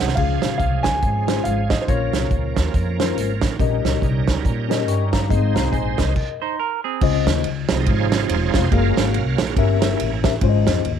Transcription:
Already playing: D#3 G#3 C4 G#4 F#5
0.01 C2
0.08 snare
0.15 C#2 C#3 F3 G#3 C#4 F4 G#4 F5, kick, crash
0.42 A#1, snare, closed hi-hat
0.58 C2 F5, kick, closed hi-hat
0.83 C#2 G#5, kick, snare, closed hi-hat
1.02 G#1, kick, closed hi-hat
1.27 C#4 F4 G#4 C5, snare, closed hi-hat
1.44 G#1 F5, closed hi-hat
1.70 D#5, kick, snare, closed hi-hat
1.82 C5
1.87 A#1 A#2 F3 A#3 C#4 F4 A#4 C#5 F5, kick, closed hi-hat
2.13 C2, snare, closed hi-hat
2.31 C#2, kick, closed hi-hat
2.56 D#2, kick, snare, closed hi-hat
2.74 F2, kick, closed hi-hat
2.99 C#4 F4 A#4 C5, snare, closed hi-hat
3.16 G#1, closed hi-hat
3.41 A1, kick, snare, closed hi-hat
3.59 A#1 A#2 G3 C#4 D#4 G4 A#4 D#5, kick, closed hi-hat
3.84 C#2, snare, closed hi-hat
4.02 C2, kick, closed hi-hat
4.28 C#2, kick, snare, closed hi-hat
4.45 A#2, kick, closed hi-hat
4.69 C#4 G4 A#4 D#5, snare, closed hi-hat
4.88 G2 G5 C#6, closed hi-hat
5.12 F5 A#5, kick, snare, closed hi-hat
5.29 G#1 G#2 G#3 C4 D#4 G#4 C5 D#5, kick, closed hi-hat
5.54 C2 F5 A#5, snare, closed hi-hat
5.72 A#1 D#5 G#5, kick, closed hi-hat
5.98 C2 A#4 D#5, kick, snare, closed hi-hat
6.16 kick, crash
6.42 D#4 C5
6.60 A#4
6.84 C4 G#4
7.01 C#2 C#3 C#4 F4 C5 D#5, kick, crash
7.26 D#2, snare, ride bell
7.44 C#2, ride bell
7.69 C2 C3 F3 D#4 D#5, snare, ride bell
7.86 G#1 F4 G#4 C#5, kick, ride bell
8.12 snare, ride bell
8.29 E1, ride bell
8.54 F1 C#4 F4 C5 F5, kick, snare, ride bell
8.71 F#1 G#3 A#3 C#4 F4 F#4 G#4 A#4 F5, kick, ride bell
8.97 G#1 A#3 C#4 F#4, snare, ride bell
9.14 C2, ride bell
9.38 A#1, snare, ride bell
9.56 G1 G2 A#3 C#4 E4 G4 A#4 E5, kick, ride bell
9.82 snare, ride bell
10.00 A1, ride bell
10.23 C#4 G4 A#4 E5, kick, snare, ride bell
10.41 G#1 G#2 C#4 F4 C5 C#5, kick, ride bell
10.49 D#5
10.67 F2, snare, ride bell
10.85 D#2, ride bell

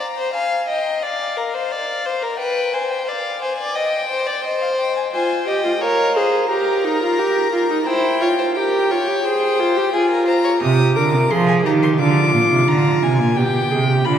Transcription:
0.00 A#5
0.17 C5
0.34 F5 G#5
0.68 D#5 G5
1.03 D5 F5
1.37 A#4
1.54 C5
1.72 D5
2.06 C5
2.23 A#4
2.39 B4 G5
2.73 C5 G#5
2.90 G5
3.07 D5 F5
3.41 C5 G#5
3.58 D5
3.75 D#5 G5
4.09 C5
4.26 D5
4.44 C5 D#5
4.62 F5
4.79 G5
4.96 G#5
5.13 F4 C5 G#5
5.47 G4 D#5 G5
5.64 F4
5.81 A#4 C#5 F5
6.16 G#4 C5
6.50 G4 A#4 A#5
6.84 D#4
7.02 F4
7.19 G4
7.53 F4
7.70 D#4
7.86 E4 C5 G5
8.22 F4 C#5
8.39 C5
8.55 G4 A#4 G5
8.91 F4 C#5
9.08 G4
9.25 G#4 C5
9.60 F4
9.76 G4
9.93 F4 G#4 G#5
10.10 A#4
10.27 C5 A#5
10.44 C#5
10.62 C3 G4 D#6
10.96 D3 A#4 D6
11.14 C3
11.31 F3 G#4 C6
11.48 G#5
11.65 D#3 G4 A#5
11.83 C6
11.99 D3 F4 D6
12.34 A#2
12.51 C3
12.68 D3 A#5
13.02 C3 G#5
13.20 A#2
13.37 B2 G4 G5
13.71 C3 G#4
13.89 G4
14.05 D3 F4 B5

